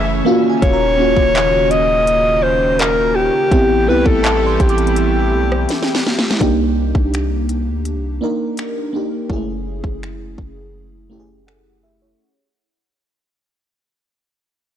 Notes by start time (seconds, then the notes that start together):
Already playing: F#1 C#3 E3 A3 C#4 E4 E5 G#5
0.25 D#3 A#3 C#4 F4 F#4 F5
0.50 G#5
0.62 D#1 C#5, kick, closed hi-hat
0.73 A#5
0.98 A#3 C#4 F4 F#4
1.17 D#1, kick
1.35 clap, closed hi-hat
1.71 D#5, closed hi-hat
2.07 closed hi-hat
2.43 C5
2.79 A#4, clap, closed hi-hat
3.15 G4
3.51 A1 E3 G3 A3 B3 C4 E4 G4, kick, closed hi-hat
3.87 C2 B3 C4 E4 G4 B4
4.06 A1 A4, kick
4.23 A5, clap, closed hi-hat
4.46 C6
4.60 A1 G4, kick, closed hi-hat
4.69 D6, closed hi-hat
4.78 closed hi-hat
4.87 closed hi-hat
4.96 closed hi-hat
5.33 B1
5.52 cross-stick
5.69 snare, closed hi-hat
5.83 snare
5.95 snare
6.07 snare
6.19 snare
6.31 snare
6.40 C2 A#3 D4 D#4 G4, kick, closed hi-hat
6.95 C2, kick
7.14 finger snap, closed hi-hat
7.49 closed hi-hat
7.68 D2
7.85 closed hi-hat
7.95 C2
8.21 A#3 D4 D#4 A#4
8.57 finger snap, closed hi-hat
8.93 A#3 D4 D#4 G4
9.30 F#1 G#3 C#4 E4 G#4, kick
9.36 A3
9.84 F#1, kick
10.03 finger snap
10.38 F#1, kick
11.10 A3 C#4 E4 G4
11.19 G#4
11.47 A4 F#5, finger snap
11.83 G#4 E5
12.02 E4 C#5